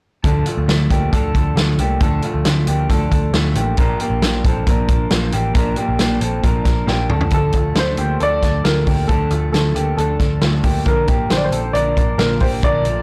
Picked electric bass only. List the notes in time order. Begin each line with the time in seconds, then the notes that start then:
0.24 D2
0.57 D2
0.68 D2
0.90 D2
1.13 D2
1.34 D2
1.56 D2
1.78 C2
2.01 D2
2.34 D2
2.45 D2
2.68 D2
2.89 D2
3.11 D2
3.33 D2
3.55 A1
3.78 A#1
4.10 A#1
4.22 A#1
4.45 A#1
4.67 A#1
4.88 A#1
5.11 A#1
5.34 A1
5.55 A#1
5.89 A#1
5.99 A#1
6.21 A#1
6.43 A#1
6.65 A#1
6.87 A#1
7.10 D2
7.32 D2
7.54 D2
7.75 D2
7.98 D2
8.21 D2
8.43 D2
8.65 D2
8.87 D2
9.09 D2
9.31 D2
9.52 D2
9.75 D2
9.97 D2
10.20 D2
10.42 D2
10.63 D2
10.86 A#1
11.08 A#1
11.30 A#1
11.51 A#1
11.74 A#1
11.97 A#1
12.18 A#1
12.41 A#1
12.63 A#1
12.84 A#1